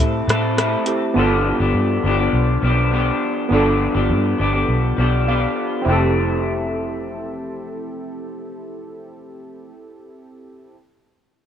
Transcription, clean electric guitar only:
Already playing: C4 E4 A4
0.28 A3 C4 E4 A4
0.56 A3 C4 E4 A4
1.16 G2 D3 F3 B3 D4 G4
1.60 F3 B3 D4 G4
2.04 F3 B3 D4 G4
2.17 F3 B3 D4 G4
2.62 F3 B3 D4 G4
2.91 F3 B3 D4 G4
3.51 G2 D3 F3 B3 D4 G4
3.94 F3 B3 D4 G4
4.38 F3 B3 D4 G4
4.53 F3 B3 D4 G4
4.97 F3 B3 D4 G4
5.26 F3 B3 D4 G4
5.84 F2 C3 E3
5.89 A3 C4

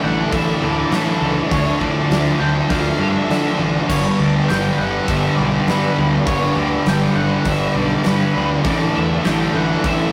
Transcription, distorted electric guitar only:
Already playing: A2
0.03 E3 A3
0.33 A2 E3 A3
0.63 E3 A3
0.92 A2 E3 A3
1.51 D3 A3 D4
2.11 D3 A3 D4
2.40 A3 D4
2.69 D3 A3 D4
2.99 A3 D4
3.29 D3 A3 D4
3.88 G2 D3 G3
4.48 G2 D3 G3
4.77 D3 G3
5.07 G2 D3 G3
5.37 D3 G3
5.67 G2 D3 G3
6.26 G2 D3 G3
6.86 G2 D3 G3
7.15 D3 G3
7.44 G2 D3 G3
7.75 D3 G3
8.05 G2 D3 G3
8.65 A2 E3 A3
9.24 A2 E3 A3
9.54 E3 A3
9.84 A2 E3 A3

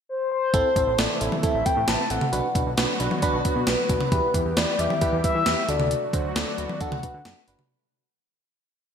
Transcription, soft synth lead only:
0.09 C5
0.32 C5
0.99 D5
1.21 E5
1.43 E5
1.66 G5
1.88 A5
2.10 F#5
3.67 B4
3.90 B4
4.57 D5
4.80 E5
5.25 E5
5.69 D5
6.36 D5
6.81 F#5

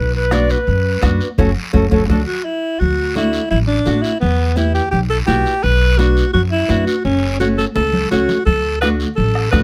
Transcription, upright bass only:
Already playing: B1
0.68 F#2
1.03 F#2
1.39 F#1
1.74 F#1
1.92 F#1
2.09 D2
2.81 D2
3.51 A1
3.87 A1
4.22 E2
4.93 B1
5.28 B1
5.64 B1
6.34 F#2
6.69 F#2
7.05 F#1
7.76 C#2
8.12 C#2
8.47 D2
9.18 A1
9.53 A1

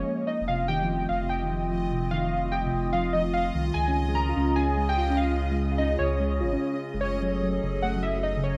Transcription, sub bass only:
0.41 F1
1.10 F1
2.73 F1
3.55 C2
3.75 C#2
4.36 C#2
6.00 C#2
6.41 G#1
6.94 F#1
7.63 F#1

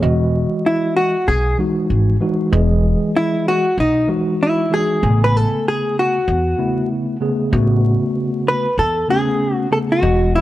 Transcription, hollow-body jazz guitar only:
0.66 E4
0.97 F#4
1.28 G#4
3.16 E4
3.48 F#4
3.80 D#4
4.43 E4
4.74 G#4
5.24 B4
5.37 A4
5.68 G#4
5.99 F#4
8.48 B4
8.79 A4
9.10 G#4
9.54 F#4
9.73 A4
9.92 F#4
10.35 E4

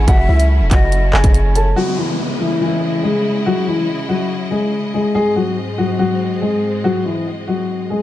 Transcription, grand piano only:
0.08 F#4 F#5
0.28 E4 E5
0.71 F#4 F#5
1.14 G#4 G#5
1.56 A4 A5
1.76 F#3 F#4
1.98 E3 E4
2.40 E3 E4
2.61 E3 E4
3.03 G#3 G#4
3.46 F#3 F#4
3.67 E3 E4
4.09 F#3 F#4
4.51 G#3 G#4
4.94 G#3 G#4
5.15 G#3 G#4
5.36 F#3 F#4
5.78 F#3 F#4
5.99 F#3 F#4
6.41 G#3 G#4
6.84 F#3 F#4
7.05 E3 E4
7.48 F#3 F#4
7.90 G#3 G#4

